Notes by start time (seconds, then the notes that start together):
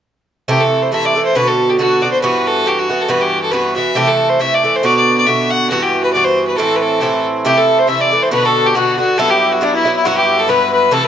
0.48 C3 E3 A3 E4 G4
0.60 A4
0.82 C5
0.92 C3 E3 A3 E4 E5
1.05 D5
1.15 E3 A3 E4
1.25 C5
1.35 B2 D3 B3 F#4 B4
1.47 A4
1.70 G4
1.78 B2 D3 B3 F#4
2.02 D3 B3 F#4 D5
2.11 C5
2.22 G2 E3 B3 F#4 B4
2.47 A4
2.66 G2 E3 B3 F#4 G4
2.78 F#4
2.90 E3 B3 F#4
3.02 A4
3.08 G2 E3 B3 F#4 B4
3.21 G4
3.43 A4
3.51 G2 E3 B3 F#4 B4
3.76 E3 B3 F#4 E5
3.95 C3 E3 A3 E4 G4
4.07 A4
4.29 C5
4.40 C3 E3 A3 E4 E5
4.54 D5
4.63 E3 A3 E4
4.76 C5
4.83 B2 D3 B3 F#4 D5
4.97 D5
5.18 D5
5.27 B2 D3 B3 F#4 E5
5.50 F#5
5.70 G2 E3 B3 F#4
5.82 G4
6.04 B4
6.13 G2 E3 B3 F#4 D5
6.24 C5
6.47 B4
6.56 A2 E3 C4 E4 A4
6.76 B4
6.82 A4
7.00 A2 E3 C4 E4 G4 A4
7.45 C3 E3 A3 E4 G4
7.57 A4
7.79 C5
7.87 C3 E3 A3 E4 E5
8.01 D5
8.11 E3 A3 E4
8.23 C5
8.31 B2 D3 B3 F#4 B4
8.45 A4
8.66 G4
8.75 B2 D3 B3 F#4
8.98 D3 B3 F#4
9.18 G2 F#3 B3 E4 A4
9.30 G4
9.52 F#4
9.61 G2 F#3 B3 D4 E4
9.74 E4
9.85 F#3 B3 E4
9.96 E4
10.04 G2 F#3 B3 E4 F#4
10.17 G4
10.39 A4
10.48 G2 F#3 B3 E4 B4
10.73 B4
10.91 C3 E3 A3 E4 A4
11.04 B4